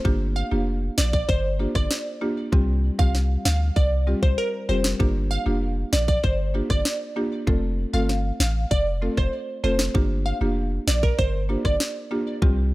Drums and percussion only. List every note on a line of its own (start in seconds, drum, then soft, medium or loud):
0.05 kick loud
0.98 snare loud
1.13 kick medium
1.29 kick medium
1.75 kick medium
1.75 cross-stick medium
1.91 snare loud
2.53 kick loud
2.99 kick medium
3.15 snare medium
3.45 snare loud
3.76 kick medium
4.23 kick medium
4.84 snare loud
5.00 kick loud
5.93 snare loud
6.08 kick medium
6.24 kick medium
6.70 kick medium
6.70 cross-stick medium
6.85 snare loud
7.47 kick loud
8.09 snare medium
8.40 snare loud
8.71 kick medium
9.17 kick medium
9.17 cross-stick medium
9.79 snare loud
9.95 kick loud
10.88 snare loud
11.03 kick loud
11.19 kick medium
11.65 kick medium
11.65 cross-stick medium
11.80 snare loud
12.42 kick loud